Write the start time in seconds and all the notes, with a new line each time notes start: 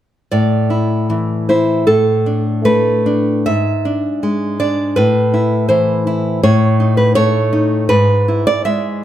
0.32 A2 D5
0.70 E4
1.10 E3
1.49 E4 C5
1.87 A2 A4
2.26 D4
2.65 A3 B4
3.06 D4
3.46 G#2 E5
3.85 D4
4.23 G#3
4.60 D4 D5
4.96 A2 B4
5.34 E4
5.69 E3 C5
6.07 E4
6.43 A2 C#5
6.80 D#4
6.97 B4
7.15 A3 C#5
7.53 D#4
7.89 G#2 B4
8.28 E4
8.47 D5
8.65 G#3 E5